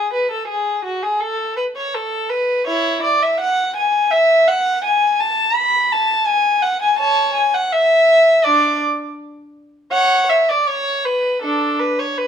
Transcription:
violin
Already playing: G#4
0.13 B4
0.31 A4
0.49 G#4
0.85 F#4
1.03 G#4
1.20 A4
1.57 B4
1.77 C#5
1.94 A4
2.30 B4
2.67 E4 C#5
3.03 D5
3.23 E5
3.41 F#5
3.76 G#5
4.11 E5
4.48 F#5
4.84 G#5
5.20 A5
5.56 B5
5.92 A5
6.27 G#5
6.63 F#5
6.82 G#5
6.99 C#5 A5
7.35 G#5
7.54 F#5
7.72 E5
8.44 D4 D5
9.92 C#5 F#5
10.30 E5
10.49 D5
10.68 C#5
11.05 B4
11.42 D4 A4
11.79 B4
11.99 C#5
12.18 B4

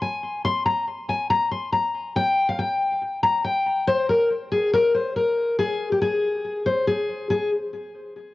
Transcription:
steel-string acoustic guitar
0.02 G#5
0.45 C6
0.66 A#5
1.09 G#5
1.30 A#5
1.51 C6
1.72 A#5
2.16 G5
2.49 F5
2.59 G5
3.23 A#5
3.45 G5
3.87 C5
4.09 A#4
4.52 G#4
4.73 A#4
4.94 C5
5.16 A#4
5.59 G#4
5.92 G4
6.02 G#4
6.66 C5
6.87 G#4
7.30 G#4

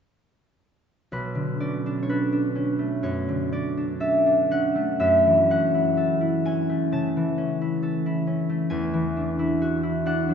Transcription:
harp
1.12 B1 B4
1.35 D3
1.60 C#4 D5
1.86 D4
2.03 C#5
2.09 A4 B4
2.32 D4
2.55 C#4
2.79 A3
3.03 F#2 C#5
3.28 D3
3.52 C#4 D5
3.77 D4
4.00 A4 E5
4.26 D4
4.51 C#4 F#5
4.75 A3
5.00 F#2 E5
5.27 E3
5.50 C#4 F#5
5.74 E4
5.97 A4
6.21 E4
6.45 C#4 G#5
6.69 A3
6.92 C#3 A5
7.17 E3
7.38 C#4
7.61 E4
7.83 A4
8.06 E4
8.27 C#4
8.49 A3
8.70 E2 G#5
8.94 E3
9.16 D4
9.39 E4
9.62 F#4
9.83 E4
10.06 D4 F#5
10.29 F#3

